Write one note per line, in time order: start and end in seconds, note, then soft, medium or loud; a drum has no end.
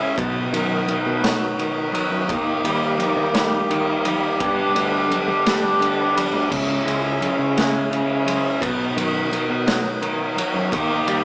0.00 0.17 C#3 medium
0.00 0.17 G#3 medium
0.00 0.16 C#4 medium
0.00 0.16 E4 medium
0.00 0.16 G#4 medium
0.00 0.16 C#5 medium
0.00 0.16 E5 medium
0.16 0.44 B1 medium
0.16 1.94 B2 medium
0.16 2.28 B3 medium
0.16 4.36 D#4 medium
0.16 2.27 F#4 medium
0.16 2.28 B4 medium
0.16 4.37 D#5 medium
0.16 kick loud
0.16 ride medium
0.16 high conga loud
0.53 0.79 F#2 medium
0.53 0.87 D#3 medium
0.53 ride medium
0.86 1.57 D#3 medium
0.86 ride medium
0.86 low conga loud
1.06 1.32 B2 loud
1.21 1.93 F#3 medium
1.21 snare loud
1.21 ride medium
1.21 high conga loud
1.58 2.28 D#3 medium
1.58 ride medium
1.92 2.29 F#3 medium
1.92 ride medium
1.92 low conga loud
2.10 2.24 F#2 medium
2.28 2.55 D#2 loud
2.28 2.97 D#3 medium
2.28 4.38 A#3 medium
2.28 6.48 G4 medium
2.28 4.38 A#4 medium
2.28 kick loud
2.28 ride medium
2.28 high conga loud
2.64 3.04 D#2 medium
2.64 3.33 G3 medium
2.64 ride medium
2.98 3.70 D#3 medium
2.98 ride medium
2.98 low conga loud
3.17 3.56 D#3 loud
3.34 4.05 G3 medium
3.34 snare loud
3.34 ride medium
3.34 high conga loud
3.70 4.23 D#3 medium
3.70 4.41 D#3 medium
3.70 ride medium
4.05 4.41 G3 medium
4.05 ride medium
4.05 low conga loud
4.40 4.67 G2 loud
4.40 6.17 G2 medium
4.40 6.50 B3 medium
4.40 6.50 D4 medium
4.40 6.50 B4 medium
4.40 6.50 D5 medium
4.40 kick loud
4.40 ride loud
4.40 high conga loud
4.76 5.02 D2 medium
4.76 5.10 D3 medium
4.76 ride medium
5.11 5.78 D3 medium
5.11 ride medium
5.11 low conga loud
5.28 5.54 G3 loud
5.28 low conga soft
5.46 6.14 G3 medium
5.46 snare loud
5.46 ride loud
5.46 high conga medium
5.80 6.50 D3 medium
5.80 ride medium
6.15 6.51 G3 medium
6.15 ride medium
6.15 low conga medium
6.33 6.46 D2 medium
6.33 low conga soft
6.51 6.78 C#2 loud
6.51 7.20 C#3 medium
6.51 8.61 C#4 medium
6.51 8.61 E4 medium
6.51 8.60 G#4 medium
6.51 8.61 C#5 medium
6.51 8.60 E5 medium
6.51 kick loud
6.51 crash loud
6.51 high conga medium
6.85 7.26 C#2 medium
6.85 7.56 G#3 medium
6.85 ride medium
7.21 7.90 C#3 medium
7.21 ride medium
7.21 low conga medium
7.39 7.78 C#3 loud
7.57 8.25 G#3 medium
7.57 snare loud
7.57 ride medium
7.57 high conga medium
7.90 8.44 C#3 medium
7.90 8.62 C#3 medium
7.90 ride medium
8.26 8.62 G#3 medium
8.26 ride medium
8.26 low conga medium
8.61 8.89 B1 loud
8.61 10.37 B2 medium
8.61 10.70 B3 medium
8.61 11.24 D#4 medium
8.61 10.71 F#4 medium
8.61 10.70 B4 medium
8.61 11.24 D#5 medium
8.61 kick loud
8.61 ride loud
8.61 high conga medium
8.97 9.23 F#2 medium
8.97 9.31 D#3 medium
8.97 ride medium
9.32 10.00 D#3 medium
9.32 ride medium
9.32 low conga loud
9.50 9.76 B2 medium
9.66 10.37 F#3 medium
9.66 snare loud
9.66 ride medium
9.66 high conga loud
10.02 10.72 D#3 medium
10.02 ride medium
10.36 10.73 F#3 medium
10.36 ride medium
10.36 low conga medium
10.54 10.68 F#2 medium
10.72 10.99 D#2 loud
10.72 11.24 D#3 medium
10.72 11.24 A#3 medium
10.72 11.24 G4 medium
10.72 11.24 A#4 medium
10.72 kick loud
10.72 ride loud
10.72 high conga medium
11.07 11.24 D#2 medium
11.07 11.24 G3 medium
11.07 ride medium